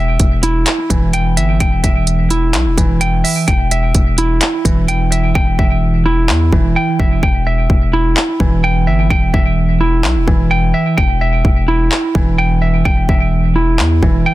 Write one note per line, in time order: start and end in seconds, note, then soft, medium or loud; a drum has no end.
0.00 0.18 E1 loud
0.00 1.36 E5 medium
0.00 1.12 G5 medium
0.20 0.65 E1 loud
0.20 kick loud
0.20 closed hi-hat medium
0.43 1.84 E4 medium
0.43 closed hi-hat medium
0.66 clap loud
0.66 closed hi-hat medium
0.90 1.38 E1 loud
0.90 2.31 E3 medium
0.90 kick medium
0.90 closed hi-hat medium
1.13 1.59 G5 medium
1.13 closed hi-hat medium
1.37 1.59 G1 loud
1.37 1.82 E5 medium
1.37 closed hi-hat medium
1.60 1.83 E1 loud
1.60 3.00 G5 loud
1.60 kick loud
1.60 closed hi-hat medium
1.84 2.56 E1 loud
1.84 3.23 E5 medium
1.84 kick loud
1.84 closed hi-hat medium
2.07 closed hi-hat medium
2.30 3.48 E4 medium
2.30 closed hi-hat medium
2.54 2.67 B1 loud
2.54 clap loud
2.54 closed hi-hat medium
2.66 2.77 E1 loud
2.78 3.23 E1 loud
2.78 3.48 E3 medium
2.78 kick loud
2.78 closed hi-hat medium
3.01 3.46 G5 loud
3.01 closed hi-hat medium
3.24 3.48 E5 medium
3.24 open hi-hat medium
3.48 3.93 E1 loud
3.48 4.87 G5 loud
3.48 kick loud
3.48 closed hi-hat medium
3.71 5.10 E5 loud
3.71 closed hi-hat medium
3.94 4.40 E1 loud
3.94 kick loud
3.94 closed hi-hat medium
4.18 5.59 E4 medium
4.18 closed hi-hat medium
4.41 clap loud
4.41 closed hi-hat medium
4.65 5.33 E1 loud
4.65 6.06 E3 medium
4.65 kick loud
4.65 closed hi-hat medium
4.88 5.34 G5 medium
4.88 closed hi-hat medium
5.12 5.58 E5 medium
5.12 closed hi-hat medium
5.35 5.58 E1 loud
5.35 6.75 G5 loud
5.35 kick loud
5.59 6.31 E1 loud
5.59 6.98 E5 medium
5.59 kick loud
6.06 7.23 E4 medium
6.29 6.51 E2 loud
6.29 clap loud
6.53 6.75 E1 loud
6.53 7.23 E3 medium
6.53 kick loud
6.76 7.22 G5 loud
6.99 7.22 E1 loud
6.99 7.23 E5 medium
6.99 kick loud
7.23 7.68 E1 loud
7.23 8.63 G5 loud
7.23 kick loud
7.47 8.86 E5 medium
7.70 8.15 E1 loud
7.70 kick loud
7.93 9.34 E4 medium
8.17 clap loud
8.40 8.88 E1 loud
8.40 9.81 E3 medium
8.40 kick medium
8.64 9.09 G5 loud
8.87 9.09 G1 loud
8.87 9.32 E5 medium
9.10 9.33 E1 loud
9.10 10.50 G5 loud
9.10 kick loud
9.34 10.06 E1 loud
9.34 10.73 E5 medium
9.34 kick loud
9.81 10.98 E4 medium
10.04 10.17 B1 loud
10.04 clap loud
10.16 10.27 E1 loud
10.28 10.73 E1 loud
10.28 10.98 E3 medium
10.28 kick loud
10.51 10.96 G5 loud
10.74 10.98 E5 medium
10.97 11.43 E1 loud
10.97 12.37 G5 medium
10.97 kick loud
11.21 12.60 E5 medium
11.45 11.90 E1 loud
11.45 kick medium
11.68 13.09 E4 medium
11.92 clap loud
12.15 12.83 E1 loud
12.15 13.56 E3 medium
12.15 kick loud
12.38 12.84 G5 medium
12.62 13.08 E5 medium
12.85 13.08 E1 loud
12.85 14.25 G5 loud
12.85 kick loud
13.09 13.81 E1 loud
13.09 14.34 E5 medium
13.09 kick loud
13.56 14.34 E4 medium
13.79 14.01 E2 loud
13.79 clap loud
14.03 14.25 E1 loud
14.03 14.34 E3 medium
14.03 kick loud
14.26 14.34 G5 medium